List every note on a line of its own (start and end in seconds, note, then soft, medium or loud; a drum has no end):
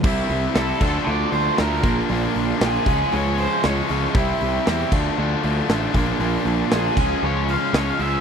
0.03 0.21 C2 medium
0.03 0.54 C3 loud
0.03 0.54 E3 medium
0.03 0.55 G3 loud
0.03 0.55 C4 loud
0.03 0.56 E4 loud
0.03 kick loud
0.03 crash loud
0.30 0.46 C2 medium
0.30 open hi-hat medium
0.55 0.72 C2 medium
0.55 0.80 C3 medium
0.55 0.80 E3 medium
0.55 0.80 G3 medium
0.55 0.81 C4 medium
0.55 0.81 E4 loud
0.55 1.08 A4 medium
0.55 snare loud
0.55 open hi-hat medium
0.81 0.97 D2 medium
0.81 1.06 D3 medium
0.81 1.06 F3 loud
0.81 1.06 A3 medium
0.81 1.07 D4 medium
0.81 1.08 F4 medium
0.81 kick loud
0.81 crash medium
1.04 1.24 D2 loud
1.04 1.57 D3 medium
1.04 1.57 F3 loud
1.04 1.58 A3 loud
1.04 1.30 D5 loud
1.09 1.58 D4 loud
1.09 1.59 F4 loud
1.31 1.49 D2 medium
1.31 1.59 C5 medium
1.31 open hi-hat medium
1.57 1.84 D2 medium
1.57 1.83 D3 medium
1.57 1.82 F3 medium
1.57 1.83 A3 medium
1.57 1.83 D4 medium
1.57 1.84 F4 medium
1.57 1.94 A#4 medium
1.57 snare loud
1.57 open hi-hat medium
1.83 2.00 A#1 medium
1.83 2.08 A#2 medium
1.83 2.08 D3 loud
1.83 2.09 F3 loud
1.83 2.09 A#3 loud
1.83 2.10 D4 loud
1.83 2.10 F4 loud
1.83 kick loud
1.83 open hi-hat medium
2.09 2.26 A#1 loud
2.09 2.59 A#2 loud
2.09 2.60 D3 loud
2.09 2.60 F3 loud
2.09 2.60 A#3 loud
2.09 2.61 D4 loud
2.09 2.62 F4 loud
2.09 open hi-hat medium
2.35 2.52 A#1 medium
2.35 open hi-hat medium
2.60 2.77 A#1 medium
2.60 2.85 A#2 medium
2.60 2.86 D3 medium
2.60 2.85 F3 medium
2.60 2.86 A#3 medium
2.60 2.86 D4 medium
2.60 2.86 F4 medium
2.60 3.15 G#4 medium
2.60 snare loud
2.60 open hi-hat medium
2.85 3.03 C#2 medium
2.85 3.10 C#3 medium
2.85 3.11 F3 medium
2.85 3.11 G#3 medium
2.85 3.12 C#4 medium
2.85 3.12 F4 medium
2.85 kick loud
2.85 open hi-hat medium
3.11 3.46 C#2 medium
3.11 3.62 C#3 medium
3.11 3.62 F3 medium
3.11 3.63 G#3 loud
3.11 3.64 C#4 loud
3.11 3.64 F4 loud
3.11 3.39 C#5 medium
3.11 open hi-hat medium
3.38 3.65 C5 loud
3.38 open hi-hat medium
3.63 3.80 C#2 medium
3.63 3.87 C#3 medium
3.63 3.88 F3 medium
3.63 3.89 G#3 medium
3.63 3.89 C#4 medium
3.63 3.90 F4 medium
3.63 4.01 C#5 loud
3.63 snare loud
3.63 open hi-hat medium
3.88 4.06 C#2 medium
3.88 4.13 C#3 medium
3.88 4.14 F3 medium
3.88 4.14 G#3 loud
3.88 4.14 C#4 medium
3.88 4.14 F4 medium
3.88 open hi-hat medium
4.15 4.31 C2 medium
4.15 4.65 C3 medium
4.15 4.66 E3 loud
4.15 4.66 G3 loud
4.15 4.67 C4 loud
4.15 4.67 E4 loud
4.15 kick loud
4.15 open hi-hat medium
4.40 4.58 C2 loud
4.40 open hi-hat medium
4.66 4.83 E2 loud
4.66 4.91 C3 medium
4.66 4.91 E3 medium
4.66 4.91 G3 medium
4.66 4.92 C4 loud
4.66 4.92 E4 medium
4.66 snare loud
4.66 open hi-hat medium
4.91 5.08 D2 medium
4.91 5.17 D3 medium
4.91 5.17 F3 loud
4.91 5.17 A3 medium
4.91 5.18 D4 medium
4.91 5.19 F4 loud
4.91 kick loud
4.91 crash loud
5.18 5.34 D2 loud
5.18 5.68 D3 medium
5.18 5.68 F3 loud
5.18 5.69 A3 loud
5.18 5.69 D4 loud
5.18 5.70 F4 loud
5.43 5.60 D2 medium
5.43 open hi-hat medium
5.69 5.85 A1 medium
5.69 5.93 D3 medium
5.69 5.93 F3 medium
5.69 5.94 A3 medium
5.69 5.94 D4 medium
5.69 5.94 F4 medium
5.69 snare loud
5.69 open hi-hat medium
5.94 6.11 A#1 medium
5.94 6.19 A#2 medium
5.94 6.20 D3 loud
5.94 6.19 F3 medium
5.94 6.20 A#3 medium
5.94 6.21 D4 loud
5.94 6.21 F4 loud
5.94 kick loud
5.94 open hi-hat medium
6.20 6.36 A#1 medium
6.20 6.71 A#2 loud
6.20 6.71 D3 loud
6.20 6.71 F3 loud
6.20 6.72 A#3 loud
6.20 6.73 D4 loud
6.20 6.73 F4 loud
6.20 open hi-hat medium
6.45 6.62 A#1 loud
6.45 open hi-hat medium
6.71 6.88 A#1 medium
6.71 6.96 A#2 medium
6.71 6.96 D3 medium
6.71 6.96 F3 medium
6.71 6.97 A#3 loud
6.71 6.97 D4 loud
6.71 6.97 F4 loud
6.71 7.20 G#4 medium
6.71 snare loud
6.71 open hi-hat medium
6.97 7.13 C#2 medium
6.97 7.22 C#3 medium
6.97 7.23 F3 medium
6.97 7.23 G#3 medium
6.97 7.24 C#4 loud
6.97 7.25 F4 medium
6.97 kick loud
6.97 crash medium
7.23 7.55 C#2 medium
7.23 7.73 C#3 medium
7.23 7.74 F3 loud
7.23 7.74 G#3 medium
7.23 7.75 C#4 medium
7.23 7.75 F4 loud
7.23 7.50 C#5 medium
7.49 7.76 F5 loud
7.49 open hi-hat medium
7.73 7.90 C#2 medium
7.73 7.98 C#3 medium
7.73 7.99 F3 medium
7.73 7.99 G#3 medium
7.73 8.00 C#4 medium
7.73 8.01 F4 medium
7.73 7.88 C#5 medium
7.73 snare loud
7.73 open hi-hat medium
7.89 8.01 F5 loud
7.99 8.16 C#2 medium
7.99 8.21 C#3 medium
7.99 8.21 F3 medium
7.99 8.21 G#3 medium
7.99 8.21 C#4 medium
7.99 8.21 F4 medium
7.99 8.21 E5 medium
7.99 open hi-hat medium